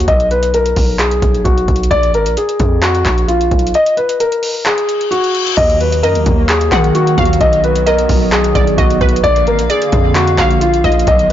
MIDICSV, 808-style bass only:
0, 0, Header, 1, 2, 480
1, 0, Start_track
1, 0, Key_signature, -6, "minor"
1, 0, Tempo, 458015
1, 83, Time_signature, 4, 2, 24, 8
1, 11870, End_track
2, 0, Start_track
2, 0, Title_t, "808-style bass"
2, 0, Program_c, 0, 38
2, 82, Note_on_c, 0, 35, 110
2, 773, Note_off_c, 0, 35, 0
2, 803, Note_on_c, 0, 35, 108
2, 1263, Note_off_c, 0, 35, 0
2, 1281, Note_on_c, 0, 35, 105
2, 1512, Note_off_c, 0, 35, 0
2, 1522, Note_on_c, 0, 35, 107
2, 1752, Note_off_c, 0, 35, 0
2, 1762, Note_on_c, 0, 35, 106
2, 1992, Note_off_c, 0, 35, 0
2, 2002, Note_on_c, 0, 34, 104
2, 2243, Note_on_c, 0, 32, 101
2, 2258, Note_off_c, 0, 34, 0
2, 2370, Note_on_c, 0, 34, 98
2, 2386, Note_off_c, 0, 32, 0
2, 2477, Note_off_c, 0, 34, 0
2, 2723, Note_on_c, 0, 41, 111
2, 3183, Note_off_c, 0, 41, 0
2, 3201, Note_on_c, 0, 34, 105
2, 3663, Note_off_c, 0, 34, 0
2, 3682, Note_on_c, 0, 35, 106
2, 3913, Note_off_c, 0, 35, 0
2, 5842, Note_on_c, 0, 39, 106
2, 6322, Note_on_c, 0, 42, 101
2, 6337, Note_off_c, 0, 39, 0
2, 6449, Note_on_c, 0, 39, 103
2, 6465, Note_off_c, 0, 42, 0
2, 6556, Note_off_c, 0, 39, 0
2, 6563, Note_on_c, 0, 39, 110
2, 7023, Note_off_c, 0, 39, 0
2, 7042, Note_on_c, 0, 51, 102
2, 7503, Note_off_c, 0, 51, 0
2, 7522, Note_on_c, 0, 39, 104
2, 7752, Note_off_c, 0, 39, 0
2, 7762, Note_on_c, 0, 35, 111
2, 8453, Note_off_c, 0, 35, 0
2, 8483, Note_on_c, 0, 35, 109
2, 8943, Note_off_c, 0, 35, 0
2, 8961, Note_on_c, 0, 35, 108
2, 9192, Note_off_c, 0, 35, 0
2, 9202, Note_on_c, 0, 35, 106
2, 9433, Note_off_c, 0, 35, 0
2, 9442, Note_on_c, 0, 35, 102
2, 9672, Note_off_c, 0, 35, 0
2, 9682, Note_on_c, 0, 34, 105
2, 9923, Note_on_c, 0, 32, 100
2, 9938, Note_off_c, 0, 34, 0
2, 10050, Note_on_c, 0, 34, 100
2, 10066, Note_off_c, 0, 32, 0
2, 10157, Note_off_c, 0, 34, 0
2, 10403, Note_on_c, 0, 41, 113
2, 10863, Note_off_c, 0, 41, 0
2, 10881, Note_on_c, 0, 34, 107
2, 11342, Note_off_c, 0, 34, 0
2, 11362, Note_on_c, 0, 34, 105
2, 11593, Note_off_c, 0, 34, 0
2, 11602, Note_on_c, 0, 35, 103
2, 11870, Note_off_c, 0, 35, 0
2, 11870, End_track
0, 0, End_of_file